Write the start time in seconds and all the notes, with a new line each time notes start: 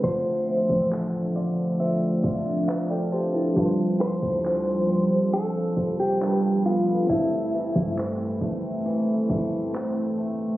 Already playing: G3 A3 C4 E4
0.01 D1 D3 F3 C4 D4 F4 C5 E5, kick, closed hi-hat
0.06 C5
0.47 C4, closed hi-hat
0.70 A1, kick
0.91 A4, clap, closed hi-hat
1.36 F4 D5
1.80 C4 D4 E5, closed hi-hat
2.24 D1 F4, kick, closed hi-hat
2.35 closed hi-hat
2.46 closed hi-hat
2.57 closed hi-hat
2.68 A4 B4 E5 F5, clap, closed hi-hat
2.90 A4 D5 G5
3.12 F4 G4 C5 A5, closed hi-hat
3.34 E4 A4
3.54 G1 G2 G3 D4 F4, kick, closed hi-hat
3.59 B4
3.65 C5
4.00 F3 C5, closed hi-hat
4.23 D2, kick
4.44 D4, clap, closed hi-hat
4.89 C4
5.33 F3 A4, closed hi-hat
5.77 F1 C4, kick, closed hi-hat
5.88 closed hi-hat
5.99 G4, closed hi-hat
6.10 closed hi-hat
6.20 G2 G3 D4 F4 A4 A#4 B4, clap, closed hi-hat
6.29 B4
6.65 B3 F4, closed hi-hat
7.07 G1 G2 A3 C4 E4, kick, closed hi-hat
7.12 A4
7.53 E3, closed hi-hat
7.76 G2, kick
7.97 C4, clap, closed hi-hat
8.41 G1 A3, kick
8.86 E3, closed hi-hat
9.30 G1 A3, kick, closed hi-hat
9.45 closed hi-hat
9.59 closed hi-hat
9.74 C4, clap, closed hi-hat
10.18 A3, closed hi-hat